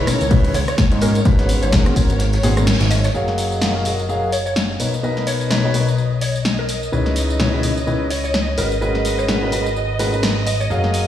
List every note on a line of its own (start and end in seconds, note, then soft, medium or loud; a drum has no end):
0.00 3.15 C#5 medium
0.07 0.20 C#3 medium
0.07 0.20 C#4 medium
0.07 0.20 D#4 medium
0.07 0.20 E4 medium
0.07 0.20 A#4 medium
0.07 cross-stick medium
0.07 open hi-hat loud
0.07 tambourine medium
0.21 0.50 C#2 medium
0.21 closed hi-hat soft
0.21 tambourine soft
0.31 0.50 C#3 medium
0.31 0.50 C#4 medium
0.31 0.50 D#4 medium
0.31 0.50 E4 medium
0.31 0.50 B4 loud
0.31 kick loud
0.31 closed hi-hat medium
0.31 open hi-hat medium
0.31 tambourine soft
0.45 snare medium
0.45 closed hi-hat soft
0.54 0.64 C#2 medium
0.54 0.65 C#5 medium
0.54 snare soft
0.54 open hi-hat loud
0.54 tambourine medium
0.68 0.78 C#5 medium
0.68 cross-stick medium
0.68 closed hi-hat soft
0.68 tambourine soft
0.78 kick loud
0.78 snare loud
0.78 closed hi-hat medium
0.78 tambourine medium
0.78 tambourine soft
0.92 1.21 G#2 medium
0.92 closed hi-hat soft
1.01 1.15 G#2 medium
1.01 1.15 B3 medium
1.01 1.15 C#4 medium
1.01 1.15 F#4 medium
1.01 1.15 G#4 medium
1.01 1.16 A#4 loud
1.01 open hi-hat loud
1.01 tambourine medium
1.15 closed hi-hat soft
1.15 tambourine soft
1.25 1.56 G#1 loud
1.25 1.70 G#2 medium
1.25 1.70 B3 medium
1.25 1.70 C#4 medium
1.25 1.70 F#4 medium
1.25 1.70 B4 loud
1.25 kick loud
1.25 closed hi-hat medium
1.25 tambourine medium
1.25 tambourine soft
1.39 snare soft
1.39 closed hi-hat soft
1.49 open hi-hat loud
1.49 tambourine medium
1.63 1.91 G#1 loud
1.63 1.73 C#5 medium
1.63 closed hi-hat soft
1.63 tambourine soft
1.72 1.84 G#2 loud
1.72 1.84 B3 medium
1.72 1.84 C#4 medium
1.72 1.84 F#4 medium
1.72 1.84 A#4 loud
1.72 kick loud
1.72 snare loud
1.72 closed hi-hat medium
1.72 tambourine medium
1.72 tambourine soft
1.86 1.94 G#2 loud
1.86 1.94 B3 medium
1.86 1.94 C#4 medium
1.86 1.94 F#4 medium
1.86 1.94 A#4 loud
1.86 cross-stick medium
1.86 closed hi-hat soft
1.96 2.09 G#2 medium
1.96 2.09 B3 medium
1.96 2.09 C#4 medium
1.96 2.09 F#4 medium
1.96 2.09 A#4 medium
1.96 kick medium
1.96 open hi-hat loud
1.96 tambourine medium
2.10 2.39 G#1 medium
2.10 closed hi-hat soft
2.10 tambourine soft
2.19 snare loud
2.19 closed hi-hat medium
2.19 tambourine medium
2.19 tambourine soft
2.33 snare loud
2.33 closed hi-hat soft
2.33 tambourine medium
2.43 2.74 G#1 medium
2.43 2.55 G#2 loud
2.43 2.55 B3 medium
2.43 2.55 C#4 medium
2.43 2.55 F#4 medium
2.43 2.55 G#4 loud
2.43 open hi-hat loud
2.43 tambourine medium
2.57 2.67 G#2 medium
2.57 2.67 B3 medium
2.57 2.67 C#4 medium
2.57 2.67 F#4 medium
2.57 2.67 A#4 medium
2.57 cross-stick medium
2.57 closed hi-hat soft
2.57 tambourine soft
2.67 snare loud
2.67 closed hi-hat medium
2.67 tambourine medium
2.67 tambourine soft
2.81 3.10 G#1 loud
2.81 snare loud
2.81 closed hi-hat soft
2.81 tambourine medium
2.91 3.02 D#5 loud
2.91 snare loud
2.91 open hi-hat loud
2.91 tambourine medium
3.04 3.14 C#5 medium
3.04 snare loud
3.04 closed hi-hat soft
3.04 tambourine medium
3.04 tambourine soft
3.14 4.78 F#1 medium
3.14 3.59 F#3 medium
3.14 3.59 F#4 medium
3.14 3.59 G#4 medium
3.14 3.59 A#4 medium
3.14 11.07 D#5 medium
3.14 3.59 F5 medium
3.14 tambourine soft
3.28 snare soft
3.38 open hi-hat loud
3.38 tambourine medium
3.52 tambourine soft
3.61 3.72 F#3 medium
3.61 3.72 F#4 medium
3.61 3.72 G#4 medium
3.61 3.72 A#4 medium
3.61 3.72 F5 medium
3.61 snare loud
3.61 tambourine soft
3.75 3.83 F#3 medium
3.75 3.83 F#4 medium
3.75 3.83 G#4 medium
3.75 3.83 A#4 medium
3.75 3.83 F5 medium
3.85 3.98 F#3 medium
3.85 3.98 F#4 medium
3.85 3.98 G#4 medium
3.85 3.98 A#4 medium
3.85 3.98 D#5 medium
3.85 open hi-hat loud
3.85 tambourine medium
3.99 tambourine soft
4.09 4.28 F#3 medium
4.09 4.28 F#4 medium
4.09 4.28 G#4 medium
4.09 4.28 A#4 medium
4.09 4.28 F5 medium
4.09 tambourine soft
4.32 4.43 C#5 medium
4.32 open hi-hat loud
4.32 tambourine medium
4.46 4.56 C#5 medium
4.46 tambourine soft
4.56 snare loud
4.56 tambourine soft
4.80 6.90 B1 medium
4.80 4.93 B2 medium
4.80 4.93 D#4 medium
4.80 4.93 A#4 medium
4.80 4.93 B4 medium
4.80 4.93 C#5 medium
4.80 open hi-hat loud
4.80 tambourine medium
4.94 tambourine soft
5.03 5.48 B2 medium
5.03 5.48 D#4 medium
5.03 5.48 A#4 medium
5.03 5.48 B4 medium
5.03 5.48 D#5 medium
5.03 tambourine soft
5.17 snare soft
5.27 5.41 C#5 medium
5.27 open hi-hat loud
5.27 tambourine medium
5.41 tambourine soft
5.51 5.62 B2 medium
5.51 5.62 D#4 medium
5.51 5.62 A#4 medium
5.51 5.62 B4 medium
5.51 5.62 C#5 loud
5.51 snare loud
5.51 tambourine soft
5.64 5.72 B2 loud
5.64 5.72 D#4 medium
5.64 5.72 A#4 medium
5.64 5.72 B4 medium
5.64 5.72 C#5 loud
5.74 5.87 B2 medium
5.74 5.87 D#4 medium
5.74 5.87 A#4 medium
5.74 5.87 B4 medium
5.74 5.87 C#5 medium
5.74 open hi-hat loud
5.74 tambourine medium
5.88 tambourine soft
5.98 tambourine soft
6.21 6.35 C#5 medium
6.21 open hi-hat loud
6.21 tambourine medium
6.36 tambourine soft
6.45 snare loud
6.45 tambourine soft
6.59 6.98 A#4 medium
6.69 open hi-hat loud
6.69 tambourine medium
6.83 tambourine soft
6.92 8.56 C#2 medium
6.92 7.37 C#3 medium
6.92 7.37 D#4 medium
6.92 7.37 E4 medium
6.92 7.37 B4 medium
6.92 7.37 C#5 medium
6.92 tambourine soft
7.06 snare soft
7.16 open hi-hat loud
7.16 tambourine medium
7.30 tambourine soft
7.40 7.50 C#3 medium
7.40 7.50 D#4 medium
7.40 7.50 E4 medium
7.40 7.50 B4 medium
7.40 7.50 C#5 loud
7.40 snare loud
7.53 7.61 C#3 medium
7.53 7.61 D#4 medium
7.53 7.61 E4 medium
7.53 7.61 B4 medium
7.53 7.61 C#5 medium
7.63 7.76 C#3 medium
7.63 7.76 D#4 medium
7.63 7.76 E4 medium
7.63 7.76 B4 medium
7.63 7.76 C#5 medium
7.63 open hi-hat loud
7.63 tambourine medium
7.77 tambourine soft
7.87 8.06 C#3 medium
7.87 8.06 D#4 medium
7.87 8.06 E4 medium
7.87 8.06 B4 medium
7.87 8.06 C#5 medium
7.87 tambourine soft
8.10 8.21 C#5 medium
8.10 open hi-hat loud
8.10 tambourine medium
8.24 8.34 C#5 medium
8.24 tambourine soft
8.34 snare loud
8.34 tambourine soft
8.58 10.68 G#1 medium
8.58 8.71 G#3 medium
8.58 8.71 C#4 medium
8.58 8.71 F#4 medium
8.58 8.71 A#4 medium
8.58 8.71 B4 medium
8.58 open hi-hat loud
8.58 tambourine medium
8.72 tambourine soft
8.81 9.26 G#3 medium
8.81 9.26 C#4 medium
8.81 9.26 F#4 medium
8.81 9.26 A#4 medium
8.81 9.26 B4 medium
8.81 tambourine soft
8.95 snare soft
9.05 open hi-hat loud
9.05 tambourine medium
9.19 9.29 C#5 medium
9.19 tambourine soft
9.28 9.40 G#3 medium
9.28 9.40 C#4 medium
9.28 9.40 F#4 medium
9.28 9.40 A#4 medium
9.28 9.40 B4 loud
9.28 snare loud
9.28 tambourine soft
9.42 9.50 G#3 medium
9.42 9.50 C#4 medium
9.42 9.50 F#4 medium
9.42 9.50 A#4 medium
9.42 9.50 B4 loud
9.52 9.65 G#3 medium
9.52 9.65 C#4 medium
9.52 9.65 F#4 medium
9.52 9.65 A#4 medium
9.52 9.65 B4 medium
9.52 open hi-hat loud
9.52 tambourine medium
9.66 tambourine soft
9.76 tambourine soft
9.99 10.11 G#3 medium
9.99 10.11 C#4 medium
9.99 10.11 F#4 medium
9.99 10.11 A#4 medium
9.99 10.11 B4 loud
9.99 open hi-hat loud
9.99 tambourine medium
10.13 10.22 G#3 medium
10.13 10.22 C#4 medium
10.13 10.22 F#4 medium
10.13 10.22 A#4 medium
10.13 10.22 B4 medium
10.13 tambourine soft
10.23 snare loud
10.23 tambourine soft
10.47 10.58 D#5 medium
10.47 open hi-hat loud
10.47 tambourine medium
10.60 10.76 C#5 medium
10.60 tambourine soft
10.70 11.07 F#1 medium
10.70 11.07 F#3 medium
10.70 11.07 F#4 medium
10.70 11.07 G#4 medium
10.70 11.07 A#4 medium
10.70 11.07 F5 medium
10.70 tambourine soft
10.84 snare soft
10.94 open hi-hat loud
10.94 tambourine medium